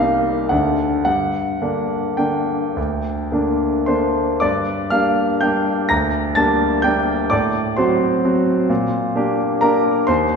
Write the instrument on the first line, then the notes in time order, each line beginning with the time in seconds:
grand piano
Already playing: C2 D#5 F5
0.00 G3 A#3 D#4
0.49 D2 D3 A3 D4 F#5
1.05 G2 F#5
1.61 D3 A#3 D4
2.17 D3 A#3 D4 G5
2.76 D2
3.32 D3 A#3 D4
3.86 D3 A#3 D4 C5 C6
4.40 G2 D5 D6
4.90 G3 A#3 D4 F5 F6
5.41 G3 A#3 D4 G5 G6
5.89 D2 A#5 A#6
6.35 G3 A#3 D4 A5 A6
6.82 G3 A#3 D4 G5 G6
7.30 A2 D5 D6
7.77 F#3 C4 F#4 C5 C6
8.25 F#3 C4 F#4
8.69 A#2
9.15 A#3 D4 G4
9.61 A#3 D4 G4 A#4 A#5
10.07 D#2 C5 C6